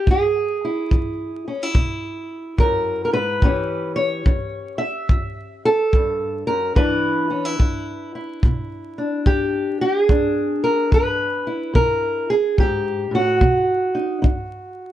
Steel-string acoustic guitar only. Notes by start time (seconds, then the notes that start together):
0.08 E2 G#4
0.65 E4
0.92 E3
1.48 C#4
1.63 E4
1.75 B2
2.58 F#2 A#4
3.05 A#4
3.13 G#2 B4
3.43 A2 E3 C#4 G4
3.96 C#5
4.26 E3
4.78 E5
5.11 E3
5.65 A4
5.94 G2
6.47 F#2 A#4
6.75 E2 E3 D4 E4 B4
7.30 C#4
7.45 E4
7.59 E3
8.15 E4
8.45 B2
8.98 D4
9.26 E3 G4
9.81 G4
10.01 G#4
10.09 E2 D4
10.64 A#4
10.92 E3 B4
11.47 E4
11.73 B2 A#4
12.30 G#4
12.58 G#2 G4
13.11 A2 F#4
13.41 B2
13.95 D#4
14.22 D#4